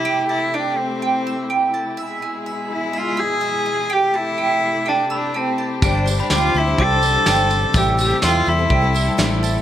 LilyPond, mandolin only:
\new Staff \with { instrumentName = "Mandolin" } { \time 4/4 \key a \minor \tempo 4 = 125 g''8 a''8 g''4 g''8 e'''8 g''8 a''8 | e''8 gis''8 e''4 e''8 e'''8 e''8 gis''8 | g''8 a''8 g''4 g''8 e'''8 g''8 a''8 | g''8 c'''8 g''4 g''8 e'''8 g''8 c'''8 |
g''8 a''8 g''4 g''8 e'''8 g''8 a''8 | }